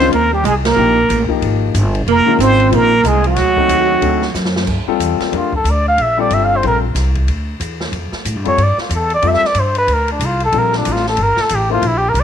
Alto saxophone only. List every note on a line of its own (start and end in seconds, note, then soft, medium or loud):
0.00 0.11 C4 medium
0.11 0.30 A#3 medium
0.32 0.44 G3 medium
0.45 0.54 G#3 medium
0.65 1.26 A#3 medium
2.08 2.38 A#3 medium
2.40 2.74 C4 medium
2.73 3.07 A#3 medium
3.05 3.25 G#3 medium
3.26 4.32 F#3 medium